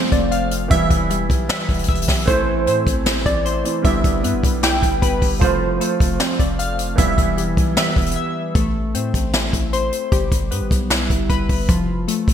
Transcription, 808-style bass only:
0.12 F1
0.71 E1
0.91 E1
1.30 B1
1.69 E1
1.89 E1
2.08 B1
2.28 A1
2.67 A2
2.87 A1
3.26 A1
3.85 G1
4.04 G1
4.24 G2
4.34 G1
4.43 B1
4.83 G1
5.02 G1
5.22 G1
5.41 F1
6.00 F1
6.40 F1
6.98 E1
7.18 E1
7.57 B1
7.96 E1
8.55 A1
8.94 A2
9.14 A1
9.53 A1
10.12 G1
10.32 G1
10.51 G2
10.61 G1
10.71 B1
11.10 G1
11.30 G1
11.49 G1
11.69 F1
12.28 F1

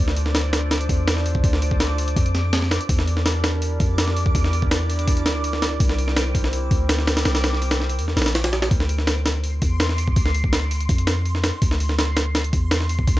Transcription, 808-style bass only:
0.00 D2
0.89 E2
1.44 D2
2.16 F2
2.89 E2
3.80 F2
4.35 E2
5.25 D2
5.80 C2
6.71 D2
7.25 C2
7.98 E2
8.17 A#1
8.71 D2
9.62 E2
10.16 D2
10.89 F2
11.62 D2
12.53 E2
13.07 D2

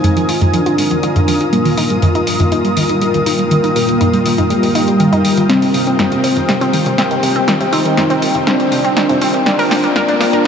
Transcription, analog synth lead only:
Already playing: D#4
0.54 D4
1.53 A#3
3.76 A#3
4.50 G3
5.49 C4
7.73 D#4
8.47 D4
9.46 D4

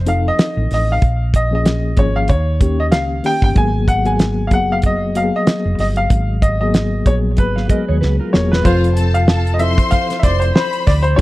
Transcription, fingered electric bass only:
Already playing: F1
0.57 A1
0.71 A1
1.02 A#1
1.98 G#1
2.30 D#2
2.93 C#2
3.42 G1
3.56 G#1
4.52 F#1
5.65 F1
5.79 G1
6.10 G#1
7.06 A#1
7.39 G#1
7.70 muted fingered electric bass stroke
7.89 D#2
8.03 C#2
8.35 E1
8.66 F1
10.24 F1
10.88 D2

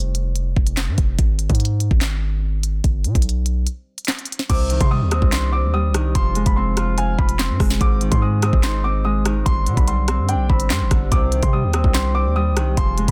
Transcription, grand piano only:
4.50 D6
4.81 C6
4.91 D#6
5.12 D#6
5.32 C6
5.52 D6
5.74 D#6
6.15 C6
6.46 B5
6.56 C6
6.77 C6
6.98 G#5
7.18 B5
7.39 C6
7.81 D6
8.11 C6
8.22 D#6
8.43 D#6
8.63 C6
8.84 D6
9.05 D#6
9.46 C6
9.77 B5
9.88 C6
10.08 C6
10.29 G5
10.50 B5
10.70 C6
11.12 D6
11.43 C6
11.53 D#6
11.74 D#6
11.94 C6
12.15 D6
12.36 D#6
12.78 C6

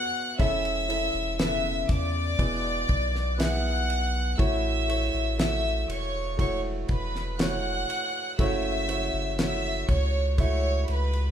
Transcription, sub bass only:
0.40 E1
1.14 E1
1.89 E2
2.39 E1
2.89 B1
4.39 A1
5.14 A1
5.89 E1
6.89 E1
8.39 F#1
9.13 F#1
9.89 C#2
10.89 C#2

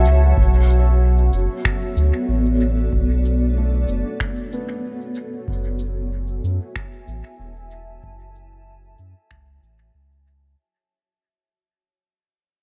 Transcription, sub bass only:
0.05 C#2
0.37 B1
1.33 F#1
1.97 D2
2.29 A1
2.93 B1
3.88 F#1
5.48 F#1
6.44 F#2
7.08 A1
7.39 E1
8.03 F#1
8.99 F#2
9.31 C#2
9.62 A1
9.94 C#2

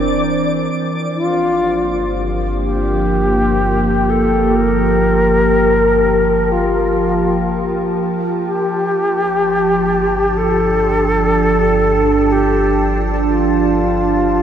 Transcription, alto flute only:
1.17 F4
2.64 G4
4.10 A4
4.56 A#4
6.52 F4
8.45 G4
10.38 A4
12.32 G4
13.28 F4

